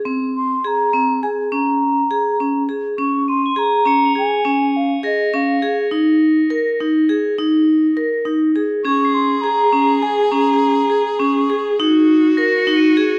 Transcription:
X:1
M:5/8
L:1/16
Q:1/4=102
K:Bbm
V:1 name="Crotales"
z8 z2 | z8 z2 | z2 e'' a'' b''2 d'' f'' a''2- | a''4 b'6- |
b' z8 z | z8 z2 | a' c''6- c'' z2 | z8 z2 |
z4 b' d'' e''4 |]
V:2 name="Flute"
z2 c'2 b4 a2 | b8 z2 | d'2 c'2 b4 a2- | a2 f2 e2 f3 z |
z8 z2 | z8 z2 | d'2 c'2 b4 a2 | b6 d'3 z |
z8 z2 |]
V:3 name="Viola"
z8 z2 | z8 z2 | z8 z2 | z8 z2 |
z8 z2 | z8 z2 | A8- A2- | A8- A2 |
G8- G2 |]
V:4 name="Vibraphone"
C4 A2 C2 A2 | D4 A2 D2 A2 | D4 A2 D2 A2 | D4 A2 D2 A2 |
E4 B2 E2 A2 | E4 B2 E2 A2 | D4 A2 D2 A2 | D4 A2 D2 A2 |
E4 B2 E2 A2 |]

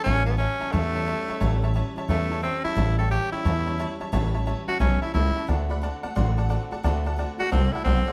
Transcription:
X:1
M:4/4
L:1/8
Q:"Swing" 1/4=177
K:Amix
V:1 name="Honky-tonk piano"
[cea] [cea] [cea] [cea] [cea] [cea] [cea] [cea] | [cea] [cea] [cea] [cea] [cea] [cea] [cea] [cea] | [cea] [ceg] [cea] [ceg] [cea] [cea] [cea] [cea] | [cea] [cea] [cea] [cea] [cea] [cea] [cea] [cea] |
[dfa] [dfb] [dfa] [dfa] [df=c'] [dfa] [dfa] [dfa] | [dfa] [dfa] [dfa] [dfa] [dfa] [dfa] [dfa] [df=c'] |]
V:2 name="Tenor saxophone"
C B, C2 A,4- | A,2 z2 A,2 =C E- | E A G E4 z | z3 F C E E2 |
z8 | z3 F =C E C2 |]
V:3 name="Steel-string acoustic guitar"
[A,,E,G,CE] [G,CE] [E,G,CE] [G,CE] [A,,E,G,CE] [G,CE] [E,G,CE] [G,CE] | [A,,E,G,CE] [G,CE] [E,G,CE] [G,CE] [A,,E,G,CE] [G,CE] [E,G,CE] [G,CE] | [A,,E,G,CE] [G,CE] [E,G,CE] [G,CE] [A,,E,G,CE] [G,CE] [E,G,CE] [G,CE] | [A,,E,G,CE] [G,CE] [E,G,CE] [G,CE] [A,,E,G,CE] [G,CE] [E,G,CE] [G,CE] |
[D,A,=CF] [A,CF] [D,A,CF] [A,CF] [D,A,CF] [A,CF] [D,A,CF] [A,CF] | [D,A,=CF] [A,CF] [D,A,CF] [A,CF] [D,A,CF] [A,CF] [D,A,CF] [A,CF] |]
V:4 name="Upright bass" clef=bass
A,,,3 z E,,3 z | A,,,3 z E,,3 z | A,,,3 z E,,3 z | A,,,3 z B,,, z C,, z |
D,,3 z A,,,3 z | D,,3 z =C,, z B,,, z |]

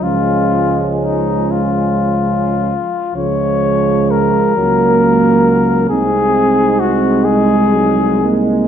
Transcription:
X:1
M:6/8
L:1/8
Q:3/8=41
K:Db
V:1 name="Flugelhorn"
F2 E F3 | d2 B4 | A2 G A2 z |]
V:2 name="French horn section"
D4- D z | A,3 B,3 | E6 |]
V:3 name="Euphonium" clef=bass
F,4- F, z | A,3 B,3 | C3 A, G, B, |]
V:4 name="Trombone section" clef=bass
A,4- A, z | F,3 G,3 | A,6 |]
V:5 name="Tuba" clef=bass
D,,4- D,, z | D,,3 D,,3 | C,,6 |]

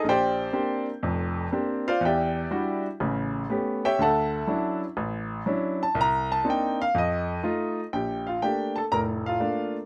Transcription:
X:1
M:4/4
L:1/16
Q:"Swing" 1/4=122
K:Bb
V:1 name="Grand piano"
[Gcdg]6 z8 [Fcdf]2 | [Gd=eg]6 z8 [G^ceg]2 | [A=e^fa]6 z8 a2 | b2 a2 g2 f2 e6- e z |
[Gg]2 [Ff]2 [Gg]2 [Aa]2 [Bb]2 [Ff]4 z2 |]
V:2 name="Grand piano"
B,,,4 [B,CDG]2 z2 [F,,,F,,]4 [B,CDG]2 z2 | =E,,4 [G,D=E^F]2 z2 [A,,,^C,]4 [A,=B,^CG]2 z2 | D,,4 [^F,^CD=E]2 z2 A,,,4 [F,CDE]2 z2 | C,,4 [B,CDE]2 z2 F,,4 [A,EF]2 z2 |
B,,,4 [A,B,D]2 z2 [F,,,A,,]4 [A,B,D]2 z2 |]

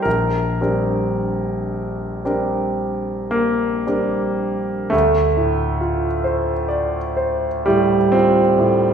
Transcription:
X:1
M:9/8
L:1/8
Q:3/8=40
K:Dphr
V:1 name="Grand piano"
B,,, [G,CDB]3 [G,CDB]3 [G,CDB]2 | D,, A,, F c d c A,, F A,, |]
V:2 name="Grand piano"
B6 B,3 | A,6 G, C2 |]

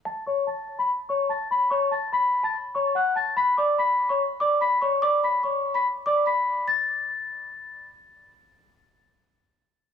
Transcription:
X:1
M:4/4
L:1/16
Q:1/4=145
K:F#m
V:1 name="Celesta"
[aa']2 [cc']2 [aa']3 [bb'] z2 [cc']2 [aa']2 [bb']2 | [cc']2 [aa']2 [bb']3 [aa'] z2 [cc']2 [ff']2 [aa']2 | [bb']2 [dd']2 [bb']3 [cc'] z2 [dd']2 [bb']2 [cc']2 | [dd']2 [bb']2 [cc']3 [bb'] z2 [dd']2 [bb']4 |
a'12 z4 | z16 |]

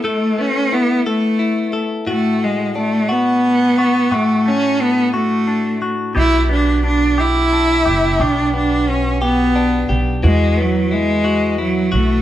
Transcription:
X:1
M:6/8
L:1/8
Q:3/8=59
K:Dlyd
V:1 name="Clean electric guitar"
[A,B,EA] B, E A E A | [A,,F]2 D F2 F | [A,,F] A, D F D F | [B,,=G] B, D G D G |
[B,,=G] B,2 G D G | [E,F] B, E F E F |]
V:2 name="Cello"
A, C B, A,2 z | A, G, A, B,3 | A, C B, A,2 z | E D D E3 |
D D C B,2 z | G, F, G,2 F, A, |]
V:3 name="Upright bass" clef=bass
z6 | z6 | z6 | B,,,4- B,,, F,,, |
B,,,4- B,,, B,,, | E,,4- E,, B,,, |]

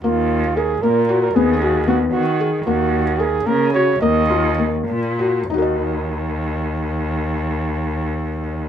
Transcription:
X:1
M:5/8
L:1/16
Q:1/4=108
K:Ebm
V:1 name="Flugelhorn"
F4 A2 B3 B | A4 G2 G3 z | G4 A2 B2 d2 | e6 z4 |
z8 z2 | z8 z2 |]
V:2 name="Felt piano"
B,4 B2 B,2 G2 | C2 G2 C4 A2 | B,4 B2 B,2 G2 | B,2 F2 B,4 G2 |
[EGBe]8- [EGBe]2- | [EGBe]8- [EGBe]2 |]
V:3 name="Cello" clef=bass
E,,6 B,,4 | E,,6 E,4 | E,,6 D,4 | E,,6 B,,4 |
E,,8- E,,2- | E,,8- E,,2 |]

